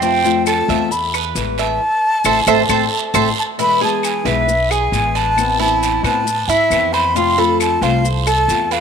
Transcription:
Already playing: F2
0.01 C3 F3 A3 C4 F4 G5, long guiro, maracas
0.24 F3 A3 C4 F4, maracas
0.46 A4 A5, short guiro, claves, maracas
0.68 E2 F3 A3 C4 F4 E5, short guiro, maracas
0.91 B5, muted nylon-string guitar stroke, long guiro, maracas
1.14 B4, claves, maracas
1.35 A1 E3 G#3 B3 E4, short guiro, maracas
1.58 E5 A5, short guiro, maracas
2.24 A1 A3 C4 E4 A4 C5 E5, long guiro, claves, maracas
2.47 A1 A3 C4 E4 A4 C5 E5, long guiro, claves, maracas
2.69 A1 A3 C4 E4 A4 C5 E5, long guiro, claves, maracas
3.14 A1 A3 C4 E4 A4 C5 E5, long guiro, claves, maracas
3.39 A5
3.58 B2 E3 G#3 B3 E4 B5, long guiro, maracas
3.81 E3 G#3 B3 E4 G#4 A5
4.03 G#5, short guiro, claves, maracas
4.25 B1 E3 G#3 B3 E4 B4 E5, short guiro, maracas
4.48 muted nylon-string guitar stroke, long guiro, maracas
4.71 G#4 G#5, claves, maracas
4.92 A1 E3 G#3 B3 E4, short guiro, maracas
5.15 B4 A5, short guiro, maracas
5.36 E3 B3 C4 E4, long guiro, claves, maracas
5.59 B3 C4 E4 A5
5.83 short guiro, maracas
6.03 A2 B3 C4 E4 B4 A5, short guiro, claves, maracas
6.26 muted nylon-string guitar stroke, long guiro, maracas
6.48 G#2 E4 E5, maracas
6.70 F2 E3 B3 C4 E4, short guiro, claves, maracas
6.93 C5 B5, short guiro, maracas
7.15 C3 F3 A3 C4 F4 C6, long guiro, maracas
7.37 F3 A3 C4 F4 A4 B5
7.60 A5, short guiro, claves, maracas
7.81 C2 F3 A3 C4 F4 C5 F5, short guiro, maracas
8.03 muted nylon-string guitar stroke, long guiro, maracas
8.26 A4 A5, claves, maracas
8.48 E2 A3 C4 F4, short guiro, maracas
8.71 B4 F5, short guiro, maracas

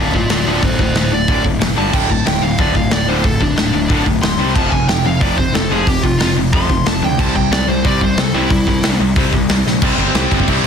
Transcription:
Already playing: D1
0.00 D2 A2 D3 D5 F5
0.14 D1 D2 A2 F4 D5, kick
0.30 D1 D2 A2 F4 D5, snare, open hi-hat
0.45 D1 D2 A2 D3 F4 D5
0.62 D1 D2 A2 A4 C5, kick, open hi-hat
0.79 D1 D2 A2 A4 C5, kick
0.95 D1 D2 A2 A4 C5, snare, open hi-hat
1.12 D1 D2 A2 D5
1.28 D1 D2 A2 D3, kick, open hi-hat
1.44 D1 D2 A2, kick
1.60 F1 D2 A2, snare, open hi-hat
1.76 G1 G2 D3 G3 A5
1.93 D1 D2 A2 D3 G5, kick, crash
2.09 D1 D2 A2 A5, kick
2.26 D1 D2 A2 G5, snare, open hi-hat
2.42 D1 D2 A2 F5
2.58 D1 D2 A2 D3 D5, kick, open hi-hat
2.75 D1 D2 A2 F5, kick
2.91 D1 D2 A2 D5, snare, open hi-hat
3.08 D1 D2 A2 D3 C5
3.24 D1 D2 A2 A4, kick, open hi-hat
3.40 D1 D2 A2 D4, kick
3.56 D1 D2 A2, snare, open hi-hat
3.73 D1 D2 A2
3.88 D1 D2 A2 D3, kick, open hi-hat
4.05 D1 D2 A2, kick
4.22 D1 D2 A2 C6, snare, open hi-hat
4.38 C2 C3 G3 C4
4.55 F1 F2 C3 F3 A5, kick, crash
4.71 F1 F2 C3 G#5, kick
4.88 F1 F2 C3 G5, snare, open hi-hat
5.05 F1 F2 C3 F5
5.21 F1 F2 C3 F3 D5, kick, open hi-hat
5.37 F1 F2 C3 C5, kick
5.54 F1 F2 C3 A4, snare, open hi-hat
5.70 F1 F2 C3 F3 G#4
5.87 F1 F2 C3 G4, kick, open hi-hat
6.03 F1 F2 C3 F4, kick
6.19 F1 F2 C3 F4, snare, open hi-hat
6.35 F1 F2 C3
6.53 F1 F2 C3 F3 C6, kick, open hi-hat
6.69 F1 F2 C3, kick
6.85 F1 F2 C3 A5, snare, open hi-hat
7.02 D2 F2 C3 G5
7.18 C2 C3 G3 C4 A5, kick, crash
7.35 C2 C3 G3 G5, kick
7.51 C2 C3 G3 D5, snare, open hi-hat
7.67 C2 C3 G3 C5
7.84 C2 C3 G3 C4 D5, kick, open hi-hat
8.01 C2 C3 G3 C5, kick
8.17 C2 C3 G3 A4, snare, open hi-hat
8.34 C2 C3 G3 C4 E4
8.50 C2 C3 G3, kick, open hi-hat
8.67 C2 C3 G3, kick
8.83 C2 C3 G3, snare, open hi-hat
9.00 C2 C3 G3
9.16 C2 C3 G3 C4, kick, open hi-hat
9.33 C2 C3 G3, kick
9.49 C2 C3 G3, snare, open hi-hat
9.66 A#1 C3 G3, snare
9.82 C2 C3 G3 C4, kick, crash
9.98 G1 C3 G3 C4, crash
10.15 C2 C3 G3 C4, snare, crash
10.31 G1 C3 G3 C4, kick, crash
10.40 kick
10.48 C2 C3 G3 C4, kick, crash
10.64 C2

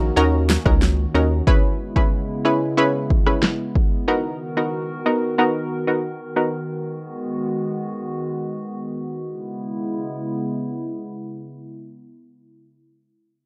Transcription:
Already playing: A#1 D#3 A#3 C#4 D#4 F#4 A#4
0.16 D#2 C#4 D#4 F#4 A#4
0.50 snare
0.66 C#2 C#4 D#4 F#4 A#4, kick, cross-stick
0.82 snare
1.15 D#2 C#4 D#4 F#4 A#4
1.47 C#3 G#3 B3 C#4 E4 G#4 B4, kick
1.96 C#4 E4 G#4 B4, kick
2.45 C#4 E4 G#4 B4
2.77 C#4 E4 G#4 B4
3.10 kick
3.26 C#4 E4 G#4 B4, cross-stick
3.43 snare
3.75 kick
4.08 D#3 B3 D#4 F#4 A#4
4.57 B3 D#4 F#4 A#4
5.06 B3 D#4 F#4 A#4
5.38 B3 D#4 F#4 A#4
5.87 B3 D#4 F#4 A#4
6.36 B3 D#4 F#4 A#4
6.69 G#3 B3 F#4
9.30 C#3 G#3 B3 E4

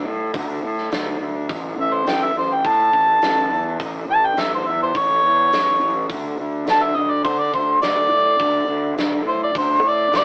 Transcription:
0.05 A2
0.34 D2, kick, open hi-hat
0.63 A2
0.78 snare
0.92 D2, snare, open hi-hat
1.20 D2
1.49 A1, kick, open hi-hat
1.78 A1 E5
1.94 C5
2.07 A1 G5, snare, open hi-hat
2.24 E5
2.35 A1 C5
2.54 G5
2.65 A2 A5, kick, open hi-hat
2.93 A1, kick
3.22 A1, snare, open hi-hat
3.51 E2
3.80 A1, kick, open hi-hat
4.08 A1 A5
4.26 G5
4.37 A1 E5, snare, open hi-hat
4.55 C5
4.66 E2 E5
4.83 C5
4.95 A1 C#5, kick, open hi-hat
5.23 E2
5.52 A1, snare, open hi-hat
5.81 A1
6.09 D2, kick, open hi-hat
6.39 D2
6.67 D2 A5, snare, open hi-hat
6.83 E5
6.96 D2 D#5
7.10 D5
7.25 D3 C5, kick, open hi-hat
7.40 D5
7.54 D2 C5, kick
7.82 D2 D5, snare, open hi-hat
8.11 A2
8.39 D2, kick, open hi-hat
8.68 D2
8.98 D2, snare, open hi-hat
9.25 A2 C5
9.43 D5
9.55 D2 C5, kick, open hi-hat
9.83 A2
9.89 D5
10.11 D2, snare, open hi-hat
10.16 D5

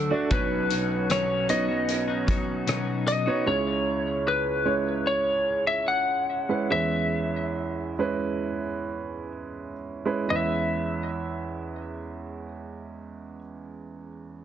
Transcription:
Already playing: D2 D3 F#3 A3 D4 F#4 A4 D5
0.11 A3 D4 F#4 D5
0.30 B1 B2 F#3 B3 C#4 D#4 F#4 B4 C#5, kick, closed hi-hat
0.70 F#3 C#4 D#4 F#4, closed hi-hat
1.09 B2 F#3 C#4 D#4 F#4 C#5, cross-stick, closed hi-hat
1.48 F#3 B3 C#4 D#4 F#4 C#5 D#5, closed hi-hat
1.68 C#4 D#4 F#4
1.89 closed hi-hat
2.08 C#4 D#4 F#4
2.27 F#3 C#4 D#4 F#4, kick, closed hi-hat
2.67 B2 F#3 C#4 D#4 F#4, cross-stick, closed hi-hat
3.07 D#5, closed hi-hat
3.26 B3 C#4 D#4 F#4 C#5
3.46 C#2 C#3 G#3 C#4 E4 C#5
4.28 B4
4.65 G#3 C#4 E4 C#5
5.07 C#5
5.67 E5
5.88 F#5
6.49 G#3 C#4 E4 B4
6.70 E2 E3 G#3 C#4 E4 B4 E5
7.99 G#3 C#4 E4 B4
10.05 G#3 C#4 E4 B4
10.28 E2 G#3 C#4 E4 B4 E5

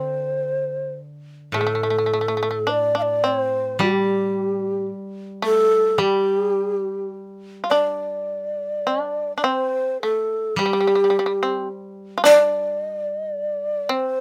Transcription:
Already playing: D3 C4 C5
1.52 A2 A3 G#4
1.61 A3
1.67 A3 A4
1.75 A3
1.83 A3
1.90 A3
1.98 A3
2.06 A3
2.13 A3
2.21 A3
2.28 A3
2.37 A3
2.43 A3
2.51 A3
2.67 D4 D5
2.95 D4 F5
3.02 D5
3.24 C4 C5
3.79 G3 G4
5.42 A3 A4
5.98 G3 G4
7.64 F4
7.70 D4 D5
8.87 D4
9.37 D4 D5
9.44 C4 C5
10.02 A3 A4
10.56 G3 G4
10.66 G3
10.73 G3
10.81 G3
10.87 G3
10.95 G3
11.04 G3
11.10 G3
11.19 G3
11.26 G3
11.43 C4
12.18 F4
12.24 D4 D5
12.82 D#5
12.98 D5
13.15 D#5
13.30 D5
13.89 C4 C5

